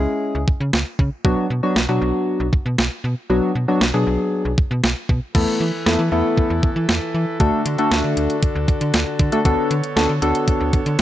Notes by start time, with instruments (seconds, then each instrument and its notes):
Already playing: synth keys G#3 C#4 E4 G#4
0.35 fm bass C#2
0.48 kick
0.60 fm bass C#3
0.73 fm bass C#2, snare
0.99 fm bass C#3, kick
1.25 fm bass B1, synth keys F#3 B3 D4 F#4, kick
1.50 fm bass B2
1.63 synth keys F#3 B3 D4 F#4
1.76 fm bass B1, snare
1.89 fm bass B2, synth keys F#3 B3 D4 F#4
2.02 fm bass B1
2.40 fm bass B1
2.53 kick
2.66 fm bass B2
2.78 fm bass B1, snare
3.04 fm bass B2
3.30 fm bass B1, synth keys F#3 B3 D4 F#4
3.55 fm bass B2
3.68 synth keys F#3 B3 D4 F#4
3.81 fm bass B1, snare
3.94 fm bass B2, synth keys F#3 B3 D4 G#4
4.07 fm bass B1
4.45 fm bass B1
4.58 kick
4.71 fm bass B2
4.84 fm bass B1, snare
5.09 fm bass B2, kick
5.35 fm bass E2, pipe organ E3 E4 A4 B4, synth keys A3 B3 E4 A4, kick, crash
5.61 fm bass E3
5.86 fm bass E2, synth keys A3 B3 E4 A4, snare
5.99 fm bass E3
6.12 fm bass E2, synth keys A3 B3 E4 A4
6.37 kick
6.50 fm bass E2
6.63 kick
6.76 fm bass E3
6.89 fm bass E2, snare
7.14 fm bass E3
7.40 fm bass D2, pipe organ D3 D4 F#4, synth keys A3 D4 F#4 A4, kick, closed hi-hat
7.66 fm bass D3, closed hi-hat
7.78 synth keys A3 D4 F#4 A4, closed hi-hat
7.91 fm bass D2, snare, closed hi-hat
8.04 fm bass D3
8.17 fm bass D2, closed hi-hat
8.30 closed hi-hat
8.43 kick, closed hi-hat
8.55 fm bass D2
8.68 kick, closed hi-hat
8.81 fm bass D3, closed hi-hat
8.94 fm bass D2, snare, closed hi-hat
9.19 fm bass D3, kick, closed hi-hat
9.32 synth keys A3 D4 F#4 A4, closed hi-hat
9.45 fm bass D2, pipe organ B3 C#5, synth keys B3 D4 F#4 A4, kick, closed hi-hat
9.71 fm bass D3, closed hi-hat
9.84 closed hi-hat
9.96 fm bass D2, synth keys B3 D4 F#4 A4, snare, closed hi-hat
10.09 fm bass D3
10.22 fm bass D2, synth keys B3 D4 F#4 A4, closed hi-hat
10.35 closed hi-hat
10.48 kick, closed hi-hat
10.61 fm bass D2
10.73 kick, closed hi-hat
10.86 fm bass D3, closed hi-hat
10.99 closed hi-hat